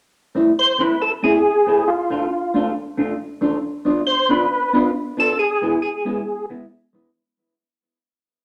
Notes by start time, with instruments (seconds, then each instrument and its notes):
0.35 clean electric guitar A3 C4 E4
0.59 tonewheel organ C5
0.78 clean electric guitar A3 C4 E4, tonewheel organ B4
1.02 tonewheel organ A4
1.23 clean electric guitar A3 C4 E4, tonewheel organ G#4
1.66 clean electric guitar A3 C4 E4
1.88 tonewheel organ F4
2.10 clean electric guitar A3 D4 F4
2.54 clean electric guitar A3 D4 F4
2.97 clean electric guitar A3 D4 F4
3.41 clean electric guitar A3 D4 F4
3.85 clean electric guitar B3 D4 F4
4.07 tonewheel organ C5
4.29 clean electric guitar B3 D4 F4, tonewheel organ B4
4.73 clean electric guitar B3 D4 F4
5.17 clean electric guitar B3 D4 F4, tonewheel organ A4
5.39 tonewheel organ G#4
5.62 clean electric guitar G#3 B3 E4
5.82 tonewheel organ G#4
6.05 clean electric guitar G#3 B3 E4
6.50 clean electric guitar G#3 B3 E4
6.93 clean electric guitar G#3 B3 E4